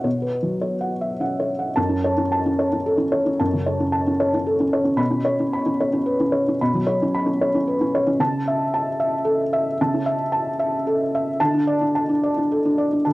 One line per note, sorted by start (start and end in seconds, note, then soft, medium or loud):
0.00 1.73 B2 soft
0.00 0.17 F#5 soft
0.04 0.35 C#5 soft
0.22 0.54 B4 soft
0.43 0.74 F#3 soft
0.61 0.93 C#5 soft
0.81 1.12 F#5 soft
1.01 1.20 E5 soft
1.20 1.51 C#4 soft
1.20 1.51 F#5 soft
1.40 1.70 C#5 soft
1.59 1.77 F#5 soft
1.76 3.36 F#2 medium
1.76 2.20 A5 medium
1.89 2.12 C#4 soft
2.04 2.48 C#5 medium
2.18 2.39 C#4 soft
2.32 2.75 A5 medium
2.46 2.67 C#4 soft
2.59 3.02 C#5 medium
2.73 2.94 C#4 soft
2.86 3.29 A4 medium
2.98 3.20 C#4 medium
3.12 3.56 C#5 medium
3.26 3.48 C#4 soft
3.40 4.96 F#2 medium
3.40 3.83 A5 medium
3.53 3.75 C#3 soft
3.66 4.10 C#5 medium
3.80 4.02 C#4 soft
3.92 4.36 A5 medium
4.07 4.29 C#4 soft
4.20 4.63 C#5 medium
4.34 4.55 C#4 soft
4.46 4.89 A4 soft
4.60 4.81 C#4 soft
4.73 5.00 C#5 medium
4.84 4.99 C#4 soft
4.96 6.54 B2 medium
4.96 5.42 B5 medium
5.11 5.34 C#4 soft
5.25 5.69 C#5 medium
5.39 5.61 C#4 soft
5.53 5.96 B5 soft
5.66 5.88 C#4 soft
5.80 6.23 C#5 medium
5.93 6.15 C#4 soft
6.06 6.49 B4 medium
6.20 6.41 C#4 medium
6.32 6.75 C#5 medium
6.48 6.69 C#4 soft
6.61 8.16 B2 medium
6.61 7.04 B5 medium
6.74 6.95 F#3 soft
6.87 7.30 C#5 medium
7.02 7.23 C#4 soft
7.15 7.57 B5 medium
7.26 7.48 C#4 soft
7.41 7.83 C#5 medium
7.55 7.75 C#4 medium
7.67 8.09 B4 soft
7.81 8.01 C#4 medium
7.95 8.20 C#5 medium
8.07 8.20 C#4 soft
8.20 9.74 C#3 medium
8.20 8.62 A5 medium
8.48 8.89 E5 medium
8.74 9.15 A5 medium
9.00 9.41 E5 medium
9.25 9.67 A4 medium
9.53 9.95 E5 medium
9.81 11.37 C#3 medium
9.81 10.23 A5 medium
9.94 10.14 C#4 soft
10.06 10.49 E5 medium
10.32 10.75 A5 medium
10.59 11.02 E5 medium
10.87 11.29 A4 medium
11.15 11.41 E5 medium
11.40 13.01 D3 medium
11.40 11.83 A5 medium
11.54 11.75 D4 soft
11.67 12.11 D5 medium
11.81 12.03 D4 soft
11.95 12.39 A5 medium
12.09 12.30 D4 soft
12.23 12.67 D5 soft
12.37 12.58 D4 soft
12.52 12.95 A4 soft
12.65 12.86 D4 soft
12.78 13.13 D5 soft
12.92 13.13 D4 soft
13.05 13.13 D3 soft
13.05 13.13 A5 soft